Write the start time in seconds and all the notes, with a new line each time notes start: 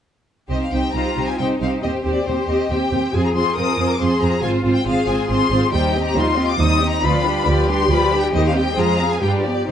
0.49 C2 C4 D#4 G4 C5 D#5
0.63 F5
0.71 C2 C4 D#4 G4 C5 G5
0.93 C2 C4 D#4 F4 G4 C5 A#5
1.16 C2 C4 D#4 G4 C5
1.27 G#5
1.38 C2 C4 D#4 G4 C5 G5
1.61 C2 C4 D#4 G4 C5 F5
1.82 D#2 C4 G4 C5 D#5
2.05 D#2 C4 G4 C5
2.12 D5
2.26 D#2 C4 G4 C5
2.48 D#2 C4 G4 C5 D#5
2.69 D#2 C4 G4 C5 G5
2.92 D#2 C4 G4 C5
3.13 F2 C4 F4 G#4 C5 G#5
3.25 A#5
3.34 F2 C4 F4 G#4 C5 C6
3.56 F2 C4 F4 G#4 A#4 C5 D#6
3.78 F2 C4 F4 G#4 C5
3.91 D6
4.00 F2 C4 F4 G#4 C5 C6
4.21 F2 C4 F4 G#4 C5 A#5
4.42 G#1 C4 F4 C5 G#5
4.64 G#1 C4 F4 C5
4.74 G5
4.85 G#1 C4 F4 G#4 C5 F5
5.08 G#1 C4 F4 C5 G#5
5.29 G#1 C4 F4 C5 C6
5.50 G#1 C4 F4 C5
5.72 D#2 G3 D#4 G4 C5 G5
5.94 C4 G4 D#5
6.03 A#5
6.15 D#2 G3 D#4 F4 C5 C6
6.36 C4 G4 D#5
6.48 D6
6.59 D#2 G3 D#4 C5 D#6
6.80 C4 G4 D#5
6.90 A#5
7.02 D2 F3 F4 B4 D5 B5
7.24 G3 D4 G4 B4
7.46 D2 F3 F4 G4 B4 D5
7.68 G3 D4 G4 B4 C6
7.90 D2 F3 F4 B4 D5 B5
8.12 G3 D4 G4 B4
8.21 G5
8.33 D#2 D#3 D#4 C5 D#5
8.48 F5
8.55 G3 C4 G4 D#5 G5
8.77 F2 G#3 F4 G#4 C5 A#5
8.99 F3 C4 G#4 F5
9.12 G#5
9.22 G2 G3 D4 F4 G4 B4 G5
9.45 F3 B3 G4 D5
9.53 D5
9.67 C2 G3 D#4 G4 C5 D5